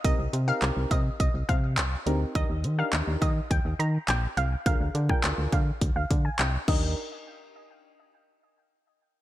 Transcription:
<<
  \new Staff \with { instrumentName = "Synth pluck" } { \time 4/4 \key ees \major \tempo 4 = 104 ees''16 r8 f''8 r16 ees''16 r16 ees''8 f''16 r4 r16 | ees''16 r8 f''8 r16 ees''16 r16 g''8 bes''16 r16 g''16 r16 f''16 r16 | f''16 r8 g''8 r16 f''16 r8 f''16 r16 aes''16 g''16 r16 ees''8 | r1 | }
  \new Staff \with { instrumentName = "Synth keys" } { \time 4/4 \key ees \major <c' ees' g' bes'>16 r16 <g' c''>16 <c' ees' g' bes'>4 r4. r16 <c' ees' g' bes'>16 r16 | <d' ees' g' bes'>16 r16 <g' c''>16 <d' ees' g' bes'>4 r2 r16 | <d' f' aes' bes'>16 r16 <aes' bes'>16 <d' f' aes' bes'>4 r4. r16 <d' ees' g' bes'>8 | r1 | }
  \new Staff \with { instrumentName = "FM bass" } { \clef bass \time 4/4 \key ees \major c,16 c,16 c8 c,16 c,16 c8 c,16 c,16 c8 c,8 d,8 | ees,16 ees,16 ees8 ees,16 ees,16 ees8 ees,16 ees,16 ees8 bes,,8 c,8 | d,16 d,16 d8 d,16 d,16 d8 d,16 d,16 d8 c,8 ees,8 | r1 | }
  \new DrumStaff \with { instrumentName = "Drums" } \drummode { \time 4/4 <hh bd>8 hh8 <hc hh>8 <hh bd>8 <hh bd>8 <hh bd>8 <hc hh>8 hh8 | <hh bd>8 hh8 <hc hh>8 <hh bd>8 <hh bd>8 hh8 <hc hh>8 hh8 | <hh bd>8 hh16 bd16 <hc hh>8 <hh bd>8 <hh bd>8 <hh bd>8 <hc hh>8 <cymc bd>8 | r4 r4 r4 r4 | }
>>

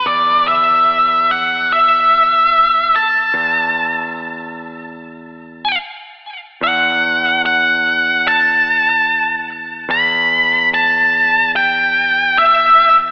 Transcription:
<<
  \new Staff \with { instrumentName = "Lead electric guitar" } { \time 4/4 \key a \dorian \tempo 4 = 73 d''8 e''4 fis''8 e''4. a''8~ | a''2. r4 | fis''4 fis''4 a''2 | b''4 a''4 g''4 e''8. r16 | }
  \new Staff \with { instrumentName = "Picked electric bass" } { \clef bass \time 4/4 \key a \dorian e,1 | e,2. r4 | e,1 | e,1 | }
>>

